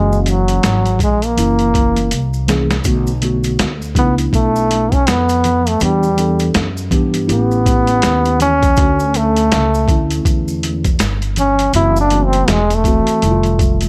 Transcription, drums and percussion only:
0.12 maracas
0.26 closed hi-hat, maracas
0.48 closed hi-hat, maracas
0.63 snare, closed hi-hat, low conga, maracas
0.86 closed hi-hat, maracas
0.99 kick, closed hi-hat, low conga, maracas
1.22 closed hi-hat, maracas
1.38 closed hi-hat, maracas
1.59 closed hi-hat, maracas
1.74 kick, closed hi-hat, maracas
1.96 closed hi-hat, high conga, maracas
2.11 closed hi-hat, maracas
2.33 maracas
2.48 snare, closed hi-hat, high conga, low conga, maracas
2.71 snare, closed hi-hat, maracas
2.84 kick, closed hi-hat, maracas
3.07 maracas
3.22 closed hi-hat, maracas
3.44 closed hi-hat, maracas
3.59 snare, closed hi-hat, high conga, maracas
3.82 maracas
3.95 kick, closed hi-hat, low conga, maracas
4.18 closed hi-hat, maracas
4.33 kick, closed hi-hat, maracas
4.56 maracas
4.71 closed hi-hat, high conga, maracas
4.92 kick, closed hi-hat, high conga, maracas
5.07 snare, closed hi-hat, maracas
5.29 closed hi-hat, maracas
5.44 closed hi-hat, low conga, maracas
5.67 closed hi-hat, maracas
5.80 closed hi-hat, maracas
6.03 maracas
6.18 closed hi-hat, maracas
6.39 closed hi-hat, maracas
6.54 snare, closed hi-hat, high conga, maracas
6.77 maracas
6.91 kick, closed hi-hat, low conga, maracas
7.14 closed hi-hat, maracas
7.29 closed hi-hat, maracas
7.51 maracas
7.66 kick, closed hi-hat, high conga, maracas
7.87 closed hi-hat, high conga, maracas
8.02 snare, closed hi-hat, maracas
8.25 closed hi-hat, maracas
8.40 closed hi-hat, low conga, maracas
8.62 kick, closed hi-hat, maracas
8.76 kick, closed hi-hat, maracas
9.00 maracas
9.14 closed hi-hat, maracas
9.36 closed hi-hat, maracas
9.52 snare, closed hi-hat, high conga, maracas
9.74 maracas
9.88 kick, closed hi-hat, low conga, maracas
10.11 closed hi-hat, maracas
10.25 kick, closed hi-hat, maracas
10.48 maracas
10.63 closed hi-hat, high conga, maracas
10.85 kick, closed hi-hat, high conga, maracas
10.99 snare, closed hi-hat, maracas
11.22 closed hi-hat, maracas
11.36 closed hi-hat, low conga, maracas
11.59 closed hi-hat, maracas
11.73 closed hi-hat, maracas
11.96 maracas
12.10 closed hi-hat, maracas
12.33 closed hi-hat, maracas
12.48 snare, closed hi-hat, high conga, low conga, maracas
12.70 closed hi-hat, high conga, maracas
12.84 kick, closed hi-hat, low conga, maracas
13.07 closed hi-hat, maracas
13.22 closed hi-hat, maracas
13.43 closed hi-hat, maracas
13.59 kick, closed hi-hat, maracas
13.81 closed hi-hat, high conga, maracas

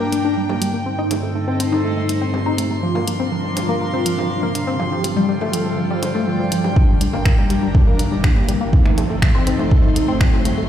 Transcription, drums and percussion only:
0.12 closed hi-hat
0.49 mid tom
0.62 closed hi-hat
1.11 closed hi-hat, mid tom
1.60 closed hi-hat
1.72 mid tom
2.09 closed hi-hat
2.34 mid tom
2.58 closed hi-hat
2.95 mid tom
3.08 closed hi-hat
3.57 closed hi-hat, mid tom
4.06 closed hi-hat
4.18 mid tom
4.55 closed hi-hat
4.80 mid tom
5.04 closed hi-hat
5.41 mid tom
5.53 closed hi-hat
6.03 closed hi-hat, mid tom
6.52 closed hi-hat
6.64 mid tom
6.76 kick
7.01 closed hi-hat
7.13 mid tom
7.26 finger snap, kick
7.50 closed hi-hat
7.75 kick, mid tom
7.99 closed hi-hat
8.24 finger snap, kick
8.36 mid tom
8.49 closed hi-hat
8.73 kick
8.86 finger snap
8.98 closed hi-hat, mid tom
9.22 finger snap, kick
9.47 closed hi-hat
9.59 mid tom
9.71 kick
9.96 closed hi-hat
10.21 finger snap, kick, mid tom
10.45 closed hi-hat

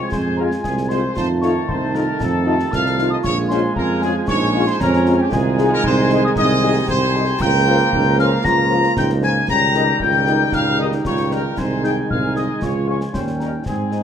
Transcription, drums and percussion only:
0.12 concert bass drum, snare
0.52 snare
0.64 concert bass drum, snare
0.78 snare
0.90 snare
1.17 concert bass drum, snare
1.43 snare
1.69 concert bass drum
1.95 snare
2.20 concert bass drum, snare
2.60 snare
2.73 concert bass drum, snare
2.86 snare
2.99 snare
3.24 concert bass drum, snare, crash
3.51 snare
3.76 concert bass drum
4.02 snare
4.28 concert bass drum, snare
4.67 snare
4.80 concert bass drum, snare
4.93 snare
5.06 snare
5.32 concert bass drum, snare
5.58 snare
5.84 concert bass drum
6.10 snare
6.36 concert bass drum, snare
6.88 concert bass drum, snare
7.40 concert bass drum, snare, crash
7.66 snare
7.93 concert bass drum
8.19 snare
8.45 concert bass drum, snare
8.84 snare
8.97 concert bass drum, snare
9.09 snare
9.22 snare
9.48 concert bass drum, snare
9.74 snare
10.00 concert bass drum
10.27 snare
10.52 concert bass drum, snare
10.92 snare
11.05 concert bass drum, snare
11.17 snare
11.31 snare
11.57 concert bass drum, snare, crash
11.84 snare
12.10 concert bass drum
12.36 snare
12.62 concert bass drum, snare
13.01 snare
13.14 concert bass drum, snare
13.27 snare
13.40 snare
13.66 concert bass drum, snare
13.92 snare

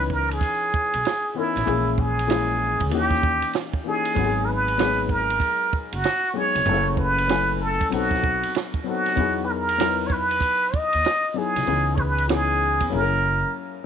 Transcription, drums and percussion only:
0.10 kick
0.31 ride
0.41 kick, ride
0.74 kick
0.94 ride
1.05 snare, hi-hat pedal, ride
1.57 snare, ride
1.68 ride
1.98 kick
2.19 ride
2.30 snare, hi-hat pedal, ride
2.80 kick, ride
2.91 ride
3.11 kick, snare
3.23 kick
3.42 ride
3.53 snare, hi-hat pedal, ride
3.73 kick
4.05 ride
4.16 kick, ride
4.68 ride
4.79 snare, hi-hat pedal, ride
5.09 kick
5.30 ride
5.40 kick, ride
5.73 kick
5.93 ride
6.04 snare, hi-hat pedal, ride
6.56 snare, ride
6.66 ride
6.97 kick
7.18 ride
7.29 snare, hi-hat pedal, ride
7.81 kick, ride
7.92 ride
8.11 kick, snare
8.24 kick
8.43 ride
8.55 snare, hi-hat pedal, ride
8.74 kick
9.06 snare, ride
9.17 kick, ride
9.69 ride
9.80 snare, hi-hat pedal, ride
10.10 kick
10.31 ride
10.41 kick, ride
10.74 kick
10.93 ride
11.05 snare, hi-hat pedal, ride
11.56 snare, ride
11.67 ride
11.98 kick
12.18 ride
12.29 snare, hi-hat pedal, ride
12.80 kick, ride

